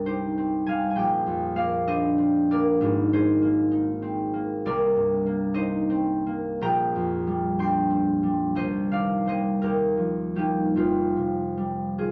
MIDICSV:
0, 0, Header, 1, 2, 480
1, 0, Start_track
1, 0, Tempo, 611621
1, 766, Time_signature, 6, 3, 24, 8
1, 4124, Tempo, 643087
1, 4604, Tempo, 723764
1, 5084, Tempo, 647948
1, 6524, Tempo, 710900
1, 7484, Tempo, 780234
1, 7964, Tempo, 831025
1, 8743, End_track
2, 0, Start_track
2, 0, Title_t, "Harp"
2, 0, Program_c, 0, 46
2, 0, Note_on_c, 0, 36, 62
2, 0, Note_on_c, 0, 43, 50
2, 0, Note_on_c, 0, 55, 54
2, 0, Note_on_c, 0, 60, 57
2, 0, Note_on_c, 0, 70, 78
2, 0, Note_on_c, 0, 75, 82
2, 45, Note_on_c, 0, 63, 51
2, 48, Note_on_c, 0, 72, 92
2, 56, Note_on_c, 0, 67, 58
2, 285, Note_off_c, 0, 60, 0
2, 295, Note_on_c, 0, 60, 60
2, 517, Note_off_c, 0, 55, 0
2, 522, Note_on_c, 0, 80, 92
2, 527, Note_on_c, 0, 55, 53
2, 541, Note_on_c, 0, 77, 76
2, 698, Note_off_c, 0, 80, 0
2, 707, Note_on_c, 0, 80, 76
2, 748, Note_on_c, 0, 34, 75
2, 754, Note_on_c, 0, 79, 85
2, 761, Note_on_c, 0, 74, 66
2, 783, Note_off_c, 0, 75, 0
2, 787, Note_off_c, 0, 63, 0
2, 790, Note_off_c, 0, 36, 0
2, 793, Note_off_c, 0, 43, 0
2, 798, Note_off_c, 0, 80, 0
2, 991, Note_on_c, 0, 41, 58
2, 1216, Note_off_c, 0, 77, 0
2, 1221, Note_on_c, 0, 58, 60
2, 1224, Note_off_c, 0, 74, 0
2, 1225, Note_on_c, 0, 77, 98
2, 1234, Note_on_c, 0, 74, 72
2, 1469, Note_off_c, 0, 72, 0
2, 1469, Note_on_c, 0, 62, 67
2, 1473, Note_on_c, 0, 75, 102
2, 1478, Note_on_c, 0, 72, 67
2, 1700, Note_off_c, 0, 60, 0
2, 1710, Note_on_c, 0, 60, 66
2, 1958, Note_off_c, 0, 74, 0
2, 1960, Note_off_c, 0, 58, 0
2, 1967, Note_on_c, 0, 58, 58
2, 1968, Note_off_c, 0, 70, 0
2, 1970, Note_on_c, 0, 74, 102
2, 1977, Note_on_c, 0, 70, 81
2, 2202, Note_on_c, 0, 32, 77
2, 2211, Note_on_c, 0, 44, 81
2, 2224, Note_off_c, 0, 62, 0
2, 2225, Note_off_c, 0, 77, 0
2, 2229, Note_off_c, 0, 34, 0
2, 2229, Note_off_c, 0, 41, 0
2, 2230, Note_off_c, 0, 79, 0
2, 2236, Note_off_c, 0, 55, 0
2, 2242, Note_off_c, 0, 67, 0
2, 2299, Note_off_c, 0, 75, 0
2, 2447, Note_off_c, 0, 72, 0
2, 2452, Note_on_c, 0, 56, 53
2, 2458, Note_on_c, 0, 72, 97
2, 2465, Note_on_c, 0, 68, 64
2, 2675, Note_off_c, 0, 58, 0
2, 2684, Note_on_c, 0, 58, 66
2, 2764, Note_off_c, 0, 74, 0
2, 2915, Note_on_c, 0, 63, 63
2, 3148, Note_off_c, 0, 60, 0
2, 3157, Note_on_c, 0, 60, 67
2, 3392, Note_off_c, 0, 58, 0
2, 3402, Note_on_c, 0, 58, 60
2, 3653, Note_on_c, 0, 36, 82
2, 3657, Note_off_c, 0, 70, 0
2, 3657, Note_on_c, 0, 74, 110
2, 3660, Note_off_c, 0, 32, 0
2, 3664, Note_off_c, 0, 44, 0
2, 3666, Note_on_c, 0, 70, 87
2, 3671, Note_off_c, 0, 56, 0
2, 3676, Note_off_c, 0, 68, 0
2, 3894, Note_on_c, 0, 43, 59
2, 4120, Note_off_c, 0, 58, 0
2, 4130, Note_on_c, 0, 58, 66
2, 4330, Note_off_c, 0, 63, 0
2, 4337, Note_on_c, 0, 63, 69
2, 4339, Note_on_c, 0, 75, 108
2, 4340, Note_off_c, 0, 72, 0
2, 4348, Note_on_c, 0, 72, 82
2, 4595, Note_off_c, 0, 60, 0
2, 4604, Note_on_c, 0, 60, 70
2, 4839, Note_off_c, 0, 58, 0
2, 4847, Note_on_c, 0, 58, 62
2, 5078, Note_on_c, 0, 34, 81
2, 5085, Note_on_c, 0, 79, 86
2, 5085, Note_on_c, 0, 82, 114
2, 5096, Note_off_c, 0, 75, 0
2, 5097, Note_off_c, 0, 63, 0
2, 5106, Note_off_c, 0, 36, 0
2, 5106, Note_off_c, 0, 43, 0
2, 5330, Note_on_c, 0, 41, 58
2, 5564, Note_on_c, 0, 55, 64
2, 5797, Note_off_c, 0, 79, 0
2, 5799, Note_on_c, 0, 62, 58
2, 5803, Note_on_c, 0, 79, 76
2, 5809, Note_on_c, 0, 84, 92
2, 6021, Note_off_c, 0, 60, 0
2, 6030, Note_on_c, 0, 60, 61
2, 6265, Note_off_c, 0, 55, 0
2, 6274, Note_on_c, 0, 55, 60
2, 6514, Note_on_c, 0, 36, 74
2, 6517, Note_off_c, 0, 72, 0
2, 6520, Note_off_c, 0, 74, 0
2, 6521, Note_on_c, 0, 75, 97
2, 6526, Note_on_c, 0, 72, 80
2, 6528, Note_off_c, 0, 70, 0
2, 6540, Note_off_c, 0, 62, 0
2, 6541, Note_off_c, 0, 34, 0
2, 6542, Note_off_c, 0, 41, 0
2, 6758, Note_on_c, 0, 51, 53
2, 6761, Note_on_c, 0, 77, 92
2, 6770, Note_on_c, 0, 74, 72
2, 6989, Note_off_c, 0, 55, 0
2, 6989, Note_off_c, 0, 58, 0
2, 6991, Note_on_c, 0, 58, 52
2, 6992, Note_off_c, 0, 75, 0
2, 6994, Note_off_c, 0, 72, 0
2, 6997, Note_on_c, 0, 55, 47
2, 7002, Note_on_c, 0, 72, 69
2, 7011, Note_on_c, 0, 75, 92
2, 7166, Note_off_c, 0, 77, 0
2, 7233, Note_on_c, 0, 70, 83
2, 7237, Note_on_c, 0, 39, 61
2, 7248, Note_on_c, 0, 67, 64
2, 7254, Note_off_c, 0, 36, 0
2, 7256, Note_off_c, 0, 60, 0
2, 7259, Note_off_c, 0, 51, 0
2, 7260, Note_off_c, 0, 72, 0
2, 7260, Note_off_c, 0, 84, 0
2, 7264, Note_off_c, 0, 74, 0
2, 7475, Note_on_c, 0, 53, 52
2, 7708, Note_off_c, 0, 55, 0
2, 7708, Note_off_c, 0, 67, 0
2, 7710, Note_on_c, 0, 55, 48
2, 7712, Note_off_c, 0, 58, 0
2, 7715, Note_on_c, 0, 67, 75
2, 7719, Note_on_c, 0, 58, 52
2, 7727, Note_on_c, 0, 63, 63
2, 7814, Note_off_c, 0, 82, 0
2, 7955, Note_on_c, 0, 29, 58
2, 7961, Note_on_c, 0, 41, 61
2, 7964, Note_on_c, 0, 60, 55
2, 7966, Note_on_c, 0, 65, 80
2, 7982, Note_off_c, 0, 39, 0
2, 8193, Note_on_c, 0, 48, 45
2, 8383, Note_off_c, 0, 79, 0
2, 8423, Note_off_c, 0, 55, 0
2, 8430, Note_on_c, 0, 55, 51
2, 8663, Note_off_c, 0, 65, 0
2, 8665, Note_on_c, 0, 51, 49
2, 8668, Note_on_c, 0, 68, 76
2, 8670, Note_on_c, 0, 65, 54
2, 8743, Note_off_c, 0, 29, 0
2, 8743, Note_off_c, 0, 41, 0
2, 8743, Note_off_c, 0, 48, 0
2, 8743, Note_off_c, 0, 51, 0
2, 8743, Note_off_c, 0, 53, 0
2, 8743, Note_off_c, 0, 55, 0
2, 8743, Note_off_c, 0, 58, 0
2, 8743, Note_off_c, 0, 60, 0
2, 8743, Note_off_c, 0, 63, 0
2, 8743, Note_off_c, 0, 65, 0
2, 8743, Note_off_c, 0, 67, 0
2, 8743, Note_off_c, 0, 68, 0
2, 8743, Note_off_c, 0, 70, 0
2, 8743, Note_off_c, 0, 75, 0
2, 8743, End_track
0, 0, End_of_file